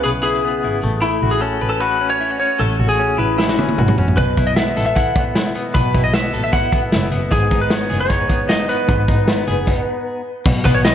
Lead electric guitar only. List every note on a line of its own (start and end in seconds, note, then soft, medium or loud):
0.04 0.09 G#4 medium
0.23 0.79 G#4 medium
1.02 1.33 E4 medium
1.31 1.41 G#4 medium
1.41 1.68 A4 medium
1.69 1.80 A4 medium
1.80 2.12 B4 medium
2.10 2.38 C#5 medium
2.40 2.61 C#5 medium
2.59 2.88 A4 medium
2.89 3.17 G#4 medium
3.18 3.37 E4 medium
3.38 3.94 E4 medium
4.17 4.48 B4 medium
4.47 4.56 D#5 medium
4.56 4.84 E5 medium
4.86 4.95 E5 medium
4.95 5.23 F#5 medium
5.74 6.02 B4 medium
6.04 6.14 D#5 medium
6.14 6.43 E5 medium
6.44 6.52 E5 medium
6.53 6.80 F#5 medium
7.32 7.59 G#4 medium
7.61 7.71 B4 medium
7.71 7.99 C#5 medium
8.00 8.51 C#5 medium
8.49 8.68 D#5 medium
8.69 10.03 B4 medium
10.65 10.75 B4 medium
10.75 10.79 C#5 medium
10.85 10.95 D#5 medium